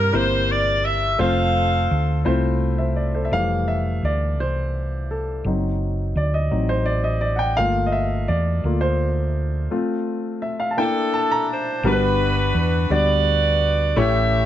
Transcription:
0.00 0.10 G2 medium
0.00 1.21 C3 medium
0.00 0.13 A#3 medium
0.00 0.13 C4 medium
0.00 0.13 E4 medium
0.00 0.13 G4 medium
0.00 0.14 A#4 loud
0.00 1.19 C5 loud
0.13 1.15 G1 medium
0.13 1.05 A#3 medium
0.13 1.05 C4 medium
0.13 1.05 E4 medium
0.13 1.05 G4 medium
0.13 1.05 A#4 medium
0.13 0.49 C5 loud
0.51 0.85 D5 loud
0.85 1.20 E5 loud
1.18 1.86 F1 medium
1.18 2.11 A3 medium
1.18 2.11 C4 medium
1.18 2.11 F4 medium
1.18 2.23 A4 medium
1.18 2.11 C5 medium
1.18 2.23 C5 medium
1.18 2.22 F5 loud
1.91 2.23 D2 medium
2.25 3.28 C2 medium
2.25 3.18 A3 medium
2.25 3.17 C4 medium
2.25 3.18 E4 medium
2.25 3.18 F4 medium
2.25 2.61 C5 medium
2.78 2.96 C5 soft
2.78 2.95 E5 medium
2.96 3.13 D5 medium
3.14 3.48 A4 medium
3.14 3.48 C5 medium
3.25 3.32 E5 medium
3.31 3.99 F1 medium
3.31 5.42 E3 medium
3.31 5.41 G3 soft
3.31 5.41 A3 soft
3.31 3.69 F5 loud
3.68 4.04 E5 medium
4.03 4.38 D2 medium
4.03 4.37 D5 medium
4.38 5.41 C2 medium
4.38 5.13 C5 medium
5.11 5.43 A4 medium
5.44 6.12 F#1 loud
5.44 5.93 F#3 medium
5.44 5.93 C4 soft
5.44 5.93 D#4 medium
6.15 6.48 D2 medium
6.15 6.33 D5 medium
6.34 6.67 D#5 medium
6.51 7.54 A1 medium
6.51 6.83 F#3 soft
6.51 6.83 C4 soft
6.51 6.84 D#4 soft
6.69 6.88 C5 medium
6.86 7.05 D5 medium
7.04 7.21 D#5 medium
7.21 7.36 D5 medium
7.36 7.40 F#5 medium
7.36 7.44 G5 medium
7.57 8.25 G1 loud
7.57 8.63 A3 medium
7.57 8.63 A#3 medium
7.57 8.64 F4 medium
7.57 7.87 F5 loud
7.86 7.94 D#5 medium
7.92 8.26 E5 medium
8.28 8.62 E2 medium
8.28 8.84 D5 medium
8.64 9.67 D2 medium
8.64 8.97 A3 soft
8.64 8.97 A#3 soft
8.64 8.97 F4 medium
8.81 9.49 C5 medium
9.71 10.74 A3 medium
9.71 10.74 C4 medium
9.71 10.74 F4 medium
10.42 10.61 E5 medium
10.60 10.70 F5 medium
10.71 10.78 A5 medium
10.77 11.25 A#3 medium
10.77 11.25 D4 soft
10.77 11.82 D4 medium
10.77 11.25 E4 medium
10.77 11.81 E4 medium
10.77 11.46 A4 medium
10.77 11.15 G5 medium
11.14 11.32 A5 medium
11.31 11.81 A#5 loud
11.51 11.85 C5 medium
11.83 12.51 G1 loud
11.83 12.87 G2 medium
11.83 12.77 G3 medium
11.83 12.77 B3 medium
11.83 12.77 D4 medium
11.83 12.88 D4 medium
11.83 12.77 F#4 medium
11.83 12.88 F#4 medium
11.83 11.91 A#4 medium
11.87 12.92 B4 loud
11.92 12.80 B4 medium
12.54 12.88 E2 medium
12.90 13.93 D2 medium
12.90 13.83 G3 medium
12.90 13.83 B3 medium
12.90 13.83 D4 medium
12.90 13.83 F#4 medium
12.90 13.94 F#4 medium
12.90 13.94 B4 medium
12.90 13.83 D5 medium
12.90 13.98 D5 loud
13.96 14.46 A1 loud
13.96 14.46 A2 medium
13.96 14.46 A3 medium
13.96 14.46 C#4 medium
13.96 14.46 E4 medium
13.96 14.46 G4 medium
13.96 14.46 C#5 medium
13.96 14.46 E5 loud
14.00 14.46 C#5 medium

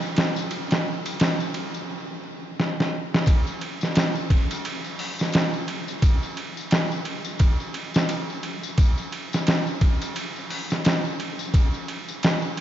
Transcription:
0.02 tambourine soft
0.17 snare loud
0.17 ride medium
0.36 tambourine medium
0.51 ride medium
0.51 tambourine medium
0.71 snare medium
0.71 ride medium
0.71 tambourine soft
1.06 ride medium
1.06 tambourine medium
1.20 snare loud
1.20 ride medium
1.20 tambourine medium
1.40 tambourine soft
1.54 ride medium
1.74 tambourine medium
2.60 snare medium
2.80 snare medium
3.14 snare medium
3.26 kick loud
3.26 ride loud
3.26 tambourine medium
3.47 tambourine soft
3.61 ride medium
3.81 snare soft
3.81 tambourine medium
3.95 snare loud
3.95 ride medium
3.95 tambourine medium
4.15 tambourine soft
4.30 kick medium
4.30 ride medium
4.51 ride soft
4.51 tambourine medium
4.65 ride medium
4.65 tambourine medium
4.84 tambourine soft
4.99 open hi-hat medium
5.19 snare soft
5.19 tambourine medium
5.32 snare loud
5.32 ride medium
5.32 tambourine medium
5.54 tambourine soft
5.68 ride medium
5.88 tambourine medium
6.02 kick loud
6.02 ride loud
6.02 tambourine medium
6.23 tambourine soft
6.37 ride medium
6.57 tambourine medium
6.71 snare loud
6.71 ride medium
6.71 tambourine medium
6.92 tambourine soft
7.05 ride medium
7.25 tambourine medium
7.39 kick loud
7.39 ride medium
7.39 tambourine medium
7.60 tambourine soft
7.74 ride medium
7.94 snare loud
7.94 tambourine medium
8.09 ride medium
8.09 tambourine medium
8.30 tambourine soft
8.43 ride medium
8.63 tambourine medium
8.78 kick loud
8.78 ride medium
8.78 tambourine medium
8.98 tambourine soft
9.12 ride medium
9.33 snare soft
9.33 tambourine medium
9.47 snare loud
9.47 ride medium
9.47 tambourine medium
9.67 tambourine soft
9.81 kick medium
9.81 ride medium
10.01 ride soft
10.01 tambourine medium
10.16 ride medium
10.16 tambourine medium
10.36 tambourine soft
10.50 open hi-hat medium
10.70 snare soft
10.70 tambourine medium
10.84 snare loud
10.84 ride medium
10.84 tambourine medium
11.05 tambourine soft
11.20 ride medium
11.39 tambourine medium
11.54 kick loud
11.54 ride medium
11.54 tambourine medium
11.74 tambourine soft
11.88 ride medium
12.09 tambourine medium
12.23 snare loud
12.23 ride medium
12.23 tambourine medium
12.42 tambourine soft
12.57 ride medium

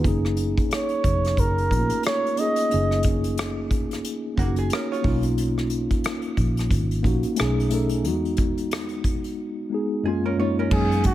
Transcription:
0.03 0.54 F#1 loud
0.03 1.27 A#3 medium
0.03 1.27 C#4 medium
0.03 1.28 D#4 medium
0.03 kick medium
0.03 closed hi-hat medium
0.08 1.29 G#4 medium
0.25 cross-stick soft
0.37 closed hi-hat medium
0.58 kick medium
0.58 closed hi-hat soft
0.71 1.41 C#5 medium
0.71 cross-stick medium
0.71 closed hi-hat medium
0.89 closed hi-hat soft
1.04 1.36 F1 medium
1.04 kick medium
1.04 closed hi-hat medium
1.24 cross-stick soft
1.24 closed hi-hat soft
1.37 1.69 F#1 medium
1.37 2.05 A#4 medium
1.37 kick medium
1.37 closed hi-hat medium
1.58 closed hi-hat soft
1.70 1.89 A#1 medium
1.70 1.78 A3 soft
1.70 2.33 C#4 medium
1.70 2.33 D#4 medium
1.70 kick medium
1.70 closed hi-hat medium
1.75 2.35 A#3 medium
1.75 2.34 F4 medium
1.90 closed hi-hat soft
2.03 2.41 C#5 medium
2.03 cross-stick medium
2.03 closed hi-hat medium
2.27 closed hi-hat soft
2.36 2.68 A#3 medium
2.36 2.68 C#4 medium
2.36 2.69 D#4 medium
2.36 3.05 D#5 loud
2.36 closed hi-hat medium
2.41 2.70 G#4 medium
2.56 closed hi-hat medium
2.69 3.93 A#3 medium
2.69 3.94 C#4 medium
2.69 3.95 D#4 soft
2.69 closed hi-hat soft
2.74 4.02 F#1 loud
2.74 3.95 G#4 medium
2.91 cross-stick soft
2.91 closed hi-hat soft
3.03 kick medium
3.03 closed hi-hat medium
3.24 closed hi-hat soft
3.38 cross-stick medium
3.38 closed hi-hat medium
3.71 kick medium
3.71 closed hi-hat medium
3.91 cross-stick soft
3.91 closed hi-hat soft
4.05 closed hi-hat medium
4.36 4.69 F#1 medium
4.36 4.98 A#3 medium
4.36 4.57 A#3 medium
4.36 4.99 C#4 medium
4.36 5.00 D#4 medium
4.36 4.57 F#4 medium
4.36 kick medium
4.36 closed hi-hat medium
4.41 5.01 F#4 medium
4.56 4.71 G#4 medium
4.56 closed hi-hat soft
4.70 4.91 C#4 medium
4.70 4.91 A#4 medium
4.70 cross-stick loud
4.70 closed hi-hat medium
4.92 5.23 F4 medium
4.92 5.23 C#5 medium
4.92 closed hi-hat soft
5.03 5.87 B1 medium
5.03 6.26 A#3 medium
5.03 6.27 C#4 medium
5.03 6.28 D#4 medium
5.03 kick medium
5.03 open hi-hat soft
5.08 6.29 F4 medium
5.23 closed hi-hat medium
5.38 closed hi-hat medium
5.58 cross-stick soft
5.70 closed hi-hat medium
5.91 kick medium
5.91 closed hi-hat soft
6.04 cross-stick loud
6.04 closed hi-hat medium
6.22 closed hi-hat soft
6.37 6.69 A#1 medium
6.37 kick medium
6.37 closed hi-hat medium
6.57 cross-stick soft
6.57 closed hi-hat soft
6.71 7.02 G#1 medium
6.71 kick medium
6.71 closed hi-hat medium
6.91 closed hi-hat soft
7.03 7.23 A#1 medium
7.03 7.37 A#3 medium
7.03 7.36 C#4 medium
7.03 7.38 D#4 medium
7.03 kick medium
7.03 closed hi-hat soft
7.07 7.39 F#4 medium
7.23 closed hi-hat soft
7.36 7.67 A3 medium
7.36 7.68 C#4 medium
7.36 7.69 D#4 medium
7.36 closed hi-hat medium
7.40 8.07 B1 medium
7.40 7.70 G#4 loud
7.40 cross-stick loud
7.60 closed hi-hat soft
7.70 8.01 A3 medium
7.70 8.02 C#4 medium
7.70 8.03 D#4 medium
7.70 closed hi-hat medium
7.74 8.03 A4 medium
7.89 closed hi-hat soft
8.03 8.11 F#3 medium
8.03 9.27 B3 medium
8.03 9.28 D#4 medium
8.03 closed hi-hat medium
8.07 9.35 E2 loud
8.07 9.30 G#3 medium
8.07 9.29 F#4 medium
8.25 closed hi-hat soft
8.37 kick medium
8.37 closed hi-hat medium
8.58 closed hi-hat soft
8.71 cross-stick loud
8.71 closed hi-hat medium
8.89 closed hi-hat soft
9.04 kick medium
9.04 closed hi-hat medium
9.24 closed hi-hat soft
9.70 10.03 G#3 medium
9.70 10.04 B3 medium
9.70 10.05 D#4 medium
9.74 10.06 G#4 medium
10.03 10.35 F#2 medium
10.03 10.35 G#3 medium
10.03 10.36 A#3 medium
10.03 10.36 C#4 medium
10.03 10.24 G#4 medium
10.08 10.37 F4 loud
10.26 10.38 C#4 medium
10.26 10.38 A#4 medium
10.37 10.68 F#2 medium
10.37 10.68 G#3 medium
10.37 10.69 A#3 medium
10.37 10.70 C#4 medium
10.37 10.58 F4 medium
10.37 10.57 C#5 medium
10.41 10.70 D#4 medium
10.59 10.90 C#4 medium
10.59 10.90 A#4 medium
10.69 11.14 F#2 loud
10.69 11.14 G#3 medium
10.69 11.14 A#3 medium
10.69 11.03 G#4 medium
10.69 kick loud
10.69 crash medium
10.92 closed hi-hat soft
11.04 11.14 F#4 medium
11.04 kick medium
11.04 closed hi-hat medium

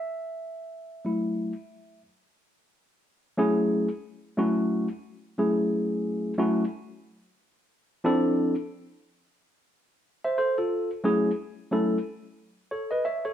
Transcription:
0.00 2.01 E5 medium
1.05 1.52 F#3 medium
1.05 1.52 A3 soft
1.05 1.52 E4 medium
3.38 3.87 F#3 medium
3.38 3.87 A3 medium
3.38 3.88 C#4 medium
3.38 3.88 E4 medium
3.38 3.88 G#4 medium
4.37 4.87 F#3 medium
4.37 4.87 A3 medium
4.37 4.88 C#4 medium
4.37 4.87 E4 medium
4.37 4.88 F#4 medium
5.38 6.33 F#3 medium
5.38 6.33 A3 medium
5.38 6.33 C#4 medium
5.38 6.33 E4 medium
5.38 6.33 G#4 medium
6.38 6.63 F#3 medium
6.38 6.63 A3 medium
6.38 6.64 C#4 medium
6.38 6.64 E4 medium
6.38 6.64 F#4 medium
8.04 8.54 F3 medium
8.04 8.54 C4 medium
8.04 8.54 D4 medium
8.04 8.54 E4 medium
8.04 8.55 A4 loud
10.24 10.37 C5 medium
10.24 10.38 E5 medium
10.38 10.57 A4 medium
10.38 10.57 C5 medium
10.58 10.90 F4 medium
10.58 10.90 A4 medium
11.04 11.30 F#3 medium
11.04 11.30 A3 medium
11.04 11.30 C#4 medium
11.04 11.30 E4 medium
11.04 11.30 G#4 loud
11.71 11.97 F#3 medium
11.71 11.97 A3 medium
11.71 11.97 C#4 medium
11.71 11.97 E4 medium
11.71 11.98 A4 medium
12.71 12.91 A4 medium
12.71 12.90 C#5 medium
12.91 13.04 B4 medium
12.91 13.04 D#5 medium
13.05 13.24 C#5 medium
13.05 13.24 E5 medium
13.25 13.33 A4 medium
13.25 13.33 C#5 medium

